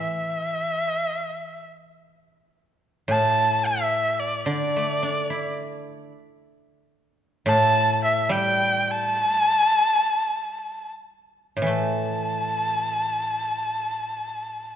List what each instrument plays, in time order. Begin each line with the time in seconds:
Already playing: guzheng E3
0.01 erhu E5
3.08 guzheng A2, erhu A5
3.66 erhu E5
4.19 erhu D5
4.46 guzheng D3, erhu D5
4.76 guzheng A3
5.03 guzheng D4
5.30 guzheng E4
7.46 guzheng A2, erhu A5
8.04 erhu E5
8.29 guzheng G3, erhu G5
8.91 erhu A5
11.57 guzheng A2
11.62 guzheng E3
11.66 guzheng A3, erhu A5